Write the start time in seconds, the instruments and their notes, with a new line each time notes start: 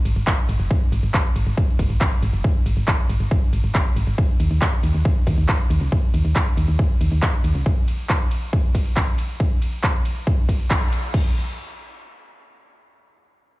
0.05 fm bass G#1, open hi-hat, ride
0.16 fm bass G#1, closed hi-hat
0.27 kick, clap, closed hi-hat, ride
0.38 closed hi-hat
0.49 fm bass G#1, open hi-hat, ride
0.60 fm bass F#1, closed hi-hat
0.71 kick, closed hi-hat, ride
0.82 closed hi-hat
0.92 fm bass G#1, open hi-hat, ride
1.03 fm bass G#1, closed hi-hat
1.14 kick, clap, closed hi-hat, ride
1.25 closed hi-hat
1.36 fm bass G#1, open hi-hat, ride
1.47 fm bass G#1, closed hi-hat
1.57 kick, closed hi-hat, ride
1.68 closed hi-hat
1.79 fm bass G#1, kick, open hi-hat, ride
1.90 fm bass G#1, closed hi-hat
2.01 kick, clap, closed hi-hat, ride
2.12 closed hi-hat
2.23 fm bass G#1, open hi-hat, ride
2.33 fm bass F#1, closed hi-hat
2.44 kick, closed hi-hat, ride
2.55 closed hi-hat
2.66 fm bass G#1, open hi-hat, ride
2.77 fm bass G#1, closed hi-hat
2.88 kick, clap, closed hi-hat, ride
2.99 closed hi-hat
3.10 fm bass G#1, open hi-hat, ride
3.20 fm bass G#1, closed hi-hat
3.31 kick, closed hi-hat, ride
3.42 closed hi-hat
3.53 fm bass G#1, open hi-hat, ride
3.64 fm bass G#1, closed hi-hat
3.75 kick, clap, closed hi-hat, ride
3.86 closed hi-hat
3.96 fm bass G#1, open hi-hat, ride
4.07 fm bass G#1, closed hi-hat
4.18 kick, closed hi-hat, ride
4.29 closed hi-hat
4.40 fm bass D#2, open hi-hat, ride
4.51 fm bass D#2, closed hi-hat
4.62 kick, clap, closed hi-hat, ride
4.73 closed hi-hat
4.83 fm bass D#2, open hi-hat, ride
4.94 fm bass D#2, closed hi-hat
5.05 kick, closed hi-hat, ride
5.16 closed hi-hat
5.27 fm bass D#2, kick, open hi-hat, ride
5.38 fm bass D#2, closed hi-hat
5.49 kick, clap, closed hi-hat, ride
5.60 closed hi-hat
5.70 fm bass D#2, open hi-hat, ride
5.81 fm bass C#2, closed hi-hat
5.92 kick, closed hi-hat, ride
6.03 closed hi-hat
6.14 fm bass D#2, open hi-hat, ride
6.25 fm bass D#2, closed hi-hat
6.36 kick, clap, closed hi-hat, ride
6.47 closed hi-hat
6.57 fm bass D#2, open hi-hat, ride
6.68 fm bass D#2, closed hi-hat
6.79 kick, closed hi-hat, ride
6.90 closed hi-hat
7.01 fm bass D#2, open hi-hat, ride
7.12 fm bass D#2, closed hi-hat
7.22 kick, clap, closed hi-hat, ride
7.33 closed hi-hat
7.44 fm bass D#2, open hi-hat, ride
7.55 fm bass C#2, closed hi-hat
7.66 kick, closed hi-hat, ride
7.77 closed hi-hat
7.88 open hi-hat, ride
7.99 closed hi-hat
8.09 kick, clap, closed hi-hat, ride
8.20 closed hi-hat
8.31 open hi-hat, ride
8.42 closed hi-hat
8.53 kick, closed hi-hat, ride
8.64 closed hi-hat
8.75 kick, open hi-hat, ride
8.86 closed hi-hat
8.96 kick, clap, closed hi-hat, ride
9.07 closed hi-hat
9.18 open hi-hat, ride
9.29 closed hi-hat
9.40 kick, closed hi-hat, ride
9.51 closed hi-hat
9.62 open hi-hat, ride
9.73 closed hi-hat
9.83 kick, clap, closed hi-hat, ride
9.94 closed hi-hat
10.05 open hi-hat, ride
10.16 closed hi-hat
10.27 kick, closed hi-hat, ride
10.38 closed hi-hat
10.49 kick, open hi-hat, ride
10.60 closed hi-hat
10.70 kick, clap, closed hi-hat, ride
10.81 closed hi-hat
10.92 open hi-hat, ride
11.03 closed hi-hat
11.14 kick, crash